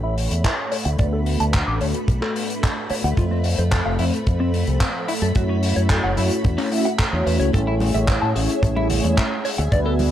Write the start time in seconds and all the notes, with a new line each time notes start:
Already playing: A1 A3 C#4 E4 C#5 B5
0.04 E4
0.18 open hi-hat
0.31 E2, closed hi-hat
0.44 E4, kick, clap, closed hi-hat
0.72 C#5, open hi-hat
0.85 D2 F#5, closed hi-hat
0.98 D2 A3 B3 D4 F#4 B4 D5, kick, closed hi-hat
1.13 A4
1.26 open hi-hat
1.40 D2 A5, closed hi-hat
1.54 F#5, kick, clap, closed hi-hat
1.67 A1 D6
1.80 D2 A3 B3 D4 F#4 B4 C#5, open hi-hat
1.94 closed hi-hat
2.08 B1, kick, closed hi-hat
2.22 A4, clap
2.36 open hi-hat
2.50 closed hi-hat
2.63 A4, kick, clap, closed hi-hat
2.89 C#5, muted fingered electric bass stroke, open hi-hat
3.04 D2 F#5, closed hi-hat
3.16 F2 A3 C4 F4 C5 E5, kick, closed hi-hat
3.31 C4
3.44 open hi-hat
3.58 F2 C5, closed hi-hat
3.72 A4, kick, clap, closed hi-hat
3.86 F1 F5
3.98 F2 F3 A3 C4 E4 C5, open hi-hat
4.14 closed hi-hat
4.27 F2, kick, closed hi-hat
4.40 C4
4.54 open hi-hat
4.67 C2, closed hi-hat
4.80 C4, kick, clap, closed hi-hat
5.08 E4, open hi-hat
5.22 F#2 A4, closed hi-hat
5.35 F#2 A3 C#4 E4 F#4 C#5, kick, closed hi-hat
5.49 C#4
5.63 open hi-hat
5.76 F#2 C#5, closed hi-hat
5.90 A4, kick, clap, closed hi-hat
6.04 F#1 F#5
6.17 F#2 A3 C#4 E4 F#4 C#5, open hi-hat
6.31 closed hi-hat
6.44 E2, kick, closed hi-hat
6.58 C#4, clap, open hi-hat
6.71 A3 C#4 E4 F#4 E5, open hi-hat
6.85 F#5, closed hi-hat
6.99 A4, kick, clap, closed hi-hat
7.12 E2 A3 C#4 E4 F#4 C#5
7.26 E2 B4, open hi-hat
7.40 C#2 C#5, closed hi-hat
7.52 A1 A3 C#4 E4 G#4 A4 C#5 E5 G#5, kick, closed hi-hat, high conga
7.67 E4
7.80 open hi-hat, high conga
7.94 A1 E5, closed hi-hat
8.08 C#5, kick, clap, closed hi-hat
8.22 A2 A5
8.35 A1 A3 C#4 E4 G#4 C#5, open hi-hat
8.49 closed hi-hat
8.63 A1, kick, closed hi-hat
8.76 E4, high conga
8.90 open hi-hat, low conga
9.03 E2, closed hi-hat, high conga
9.17 E4, kick, clap, closed hi-hat
9.45 C#5, open hi-hat
9.58 D2 F#5, closed hi-hat
9.71 D2 A3 B3 D4 F#4 B4 D5, kick, closed hi-hat, high conga
9.86 A4
9.99 open hi-hat, high conga